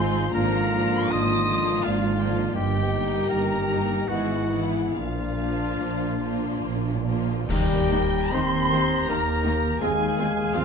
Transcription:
Already playing: G#1 G#2 D#3 G#3 C4 D#4 F4 C5 G#5 C6
0.31 G#1 G#2 D3 F3 A#3 D4 F4 A#4 F5 A#5
0.71 F3 A#3 D4 F4
1.10 G#1 G#2 D#5 C6 D#6
1.47 F3 A#3 D4 F4
1.82 G#1 G#2 F4 D5 F5
2.19 F3 A#3 D4 F4 G5
2.29 F5
2.38 D#5
2.46 F5
2.54 G1 G2 D#3 G4 D#5 G5
2.91 G3 A#3 D#4 A#4
3.29 G1 G2 A#4 G5 A#5
3.68 G3 A#3 D#4 A#4
4.08 G#1 G#2 E3 B3 E4 F#4 G#4 D#5 F#5
4.51 E3 B3 E4 G#4
4.94 A#1 A#2 F3 D4 F4 D5 F5
5.38 F3 A#3 D4 F4
5.79 A#1 A#2
6.21 F3 A#3 D4 F4
6.63 A#1 A#2
7.06 F3 A#3 D4 F4
7.48 D#2 D#3 G3 A#3 D#4 G4 G5 A#5, concert bass drum, crash
7.91 D#3 A#3 D#4 G4
8.32 D#2 D#3 A#3 C4 D#4 G4 C5 C6
8.73 D#3 A#3 D#4 G4
9.07 D#2 D#3 A#3 D#4 G4 A#4 A#5
9.43 D#3 A#3 D#4 G4
9.81 D#2 G#3 C4 F4 G#4 F5 G#5
10.18 G#3 C4 F4 G#4
10.54 D#2 F3 G#3 C4 F4 G#4 F5

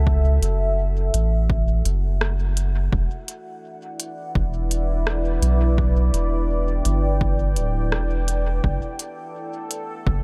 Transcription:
Already playing: C#2 A4 E5 F#5
0.07 kick
0.42 F#1, closed hi-hat
1.14 A1, closed hi-hat
1.50 kick
1.85 F#1, closed hi-hat
2.21 cross-stick
2.57 closed hi-hat
2.92 E1 E4, kick
3.16 D5
3.28 closed hi-hat
3.51 B4
4.00 closed hi-hat
4.35 E1, kick
4.71 closed hi-hat
5.07 cross-stick
5.42 B1, closed hi-hat
5.50 G5
5.78 kick
6.13 E1, closed hi-hat
6.85 G1, closed hi-hat
7.21 kick
7.56 D1, closed hi-hat
7.92 E1, cross-stick
8.28 closed hi-hat
8.64 F#1 A4, kick
8.99 closed hi-hat
9.57 E5
9.71 closed hi-hat
10.07 F#1, kick

